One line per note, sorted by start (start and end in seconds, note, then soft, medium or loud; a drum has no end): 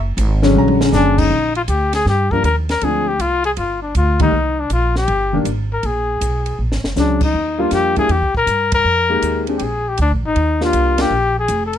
0.00 0.16 F#1 medium
0.17 0.54 G#1 medium
0.17 hi-hat pedal medium
0.17 ride medium
0.43 0.78 D3 medium
0.43 0.79 F#3 medium
0.43 0.79 G#3 medium
0.43 0.79 C#4 loud
0.43 snare medium
0.55 0.92 A#1 medium
0.55 0.92 A#5 medium
0.55 high tom soft
0.68 high tom medium
0.81 1.29 D3 medium
0.81 1.29 F#3 medium
0.81 1.29 G#3 medium
0.81 1.30 C#4 medium
0.81 snare medium
0.93 1.30 F#1 medium
0.93 1.20 D4 loud
0.93 1.24 G#5 medium
0.93 snare medium
0.93 hi-hat pedal medium
1.18 1.56 D#4 loud
1.18 kick medium
1.18 crash medium
1.31 1.68 A#1 medium
1.55 1.62 F4 medium
1.55 ride soft
1.68 2.05 D2 medium
1.68 1.92 G4 medium
1.68 hi-hat pedal soft
1.68 ride medium
1.93 2.06 G#4 medium
1.93 snare soft
1.93 ride medium
2.06 2.43 G2 medium
2.06 2.33 G4 medium
2.06 snare soft
2.31 2.43 F3 soft
2.31 2.44 G3 soft
2.31 2.44 A#3 soft
2.31 2.44 D4 medium
2.31 2.45 A#4 medium
2.31 kick soft
2.44 2.81 D#2 medium
2.44 2.56 A#4 medium
2.44 hi-hat pedal soft
2.44 ride medium
2.69 2.85 A#4 medium
2.69 snare medium
2.69 ride soft
2.81 3.18 D2 medium
2.81 3.05 F3 medium
2.81 3.05 G#3 soft
2.81 3.05 C4 soft
2.81 3.05 D4 medium
2.81 3.10 G#4 medium
2.81 ride medium
3.08 3.22 G4 medium
3.19 3.56 C2 medium
3.19 3.45 F4 medium
3.19 hi-hat pedal soft
3.19 ride medium
3.44 3.51 G#4 medium
3.44 ride soft
3.57 3.94 G1 medium
3.57 3.81 F4 medium
3.57 ride medium
3.82 3.94 D4 medium
3.95 4.32 D2 medium
3.95 4.20 F4 medium
3.95 hi-hat pedal soft
3.95 ride medium
4.20 4.32 D#3 medium
4.20 4.32 G3 medium
4.20 4.32 A#3 medium
4.20 4.32 D#4 medium
4.20 4.61 D#4 medium
4.20 kick medium
4.20 ride medium
4.32 4.69 C2 medium
4.60 4.72 D4 medium
4.70 5.07 A#1 medium
4.70 4.95 F4 medium
4.70 hi-hat pedal medium
4.70 ride medium
4.96 5.38 G4 medium
4.96 snare soft
5.08 5.45 G1 medium
5.08 ride medium
5.33 5.45 D#3 medium
5.33 5.45 G3 medium
5.33 5.45 A#3 medium
5.33 5.45 D4 medium
5.45 5.82 G#1 medium
5.45 hi-hat pedal medium
5.45 ride medium
5.73 5.87 A#4 medium
5.83 6.20 A#1 medium
5.83 6.60 G#4 medium
5.83 ride soft
6.21 6.58 B1 medium
6.21 hi-hat pedal medium
6.21 ride medium
6.46 ride soft
6.59 6.71 A#1 medium
6.71 6.83 G#1 soft
6.71 snare soft
6.84 6.95 F#1 medium
6.84 snare medium
6.96 7.33 C#2 medium
6.96 7.19 F#3 soft
6.96 7.19 G#3 medium
6.96 7.19 C#4 medium
6.96 7.19 D4 medium
6.96 7.21 D4 medium
6.96 snare soft
6.96 hi-hat pedal medium
7.21 7.62 D#4 medium
7.21 kick medium
7.21 crash medium
7.34 7.71 D#2 medium
7.58 7.94 G3 medium
7.58 7.94 A#3 medium
7.58 7.95 D4 medium
7.58 7.95 F4 medium
7.58 7.73 F4 medium
7.71 8.08 F2 medium
7.71 7.96 G4 medium
7.71 snare soft
7.71 hi-hat pedal medium
7.71 ride medium
7.96 8.08 G3 medium
7.96 8.09 A#3 medium
7.96 8.09 D4 medium
7.96 8.09 E4 medium
7.96 8.13 G#4 medium
7.96 kick medium
7.96 ride soft
8.09 8.23 E2 medium
8.09 8.36 G4 medium
8.09 ride soft
8.21 8.34 C2 soft
8.34 8.46 A#1 medium
8.34 8.71 A#4 medium
8.34 kick soft
8.46 8.84 G2 medium
8.46 hi-hat pedal medium
8.46 ride medium
8.72 9.45 A#4 loud
8.72 kick medium
8.72 ride medium
8.84 9.22 F2 medium
9.09 9.45 G#3 medium
9.09 9.45 A#3 medium
9.09 9.46 D#4 medium
9.09 9.46 G4 medium
9.22 9.59 D#2 medium
9.22 hi-hat pedal medium
9.22 ride medium
9.47 9.60 G#3 medium
9.47 9.60 C4 medium
9.47 9.60 D4 medium
9.47 9.60 G4 medium
9.47 ride soft
9.58 9.97 A#1 medium
9.58 9.65 G4 medium
9.58 ride medium
9.63 9.90 G#4 medium
9.88 10.00 G4 medium
9.98 10.13 D2 medium
9.98 hi-hat pedal soft
9.98 ride medium
10.02 10.12 D4 medium
10.11 10.23 A#1 medium
10.24 10.35 G#1 medium
10.24 10.60 D#4 medium
10.36 10.73 D#2 medium
10.36 ride soft
10.61 10.96 A#3 medium
10.61 10.97 D4 medium
10.61 10.97 F4 medium
10.61 11.03 F4 medium
10.61 10.97 G4 medium
10.61 snare soft
10.73 11.10 C2 medium
10.73 hi-hat pedal soft
10.73 ride medium
10.98 11.10 A#3 medium
10.98 11.11 D4 medium
10.98 11.11 F4 medium
10.98 11.11 G4 medium
10.98 11.38 G4 loud
10.98 snare medium
10.98 ride medium
11.11 11.48 A#1 medium
11.39 11.65 G#4 medium
11.48 11.78 F1 medium
11.48 hi-hat pedal medium
11.48 ride medium
11.66 11.78 A4 medium
11.73 ride soft